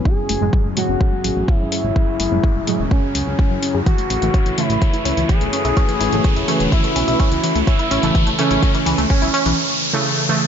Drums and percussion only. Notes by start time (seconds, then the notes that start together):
0.05 kick
0.29 open hi-hat
0.53 kick
0.77 open hi-hat
1.01 kick
1.24 open hi-hat
1.48 kick
1.72 open hi-hat
1.96 kick
2.20 open hi-hat
2.44 kick
2.67 open hi-hat
2.91 kick
3.15 open hi-hat
3.39 kick
3.63 open hi-hat
3.86 kick, closed hi-hat
3.98 closed hi-hat
4.10 open hi-hat
4.22 closed hi-hat
4.34 kick, closed hi-hat
4.46 closed hi-hat
4.58 open hi-hat
4.70 closed hi-hat
4.82 kick, closed hi-hat
4.94 closed hi-hat
5.05 open hi-hat
5.17 closed hi-hat
5.29 kick, closed hi-hat
5.41 closed hi-hat
5.53 open hi-hat
5.65 closed hi-hat
5.77 kick, closed hi-hat
5.89 closed hi-hat
6.01 open hi-hat
6.13 closed hi-hat
6.24 kick, closed hi-hat
6.36 closed hi-hat
6.48 open hi-hat
6.60 closed hi-hat
6.72 kick, closed hi-hat
6.84 closed hi-hat
6.96 open hi-hat
7.08 closed hi-hat
7.20 kick, closed hi-hat
7.32 closed hi-hat
7.44 open hi-hat
7.55 closed hi-hat
7.67 kick, closed hi-hat
7.79 closed hi-hat
7.91 open hi-hat
8.03 closed hi-hat
8.15 kick, closed hi-hat
8.27 closed hi-hat
8.39 open hi-hat
8.51 closed hi-hat
8.63 kick, closed hi-hat
8.75 closed hi-hat
8.86 open hi-hat
8.98 closed hi-hat
9.10 kick, closed hi-hat
9.22 closed hi-hat
9.34 open hi-hat
9.46 closed hi-hat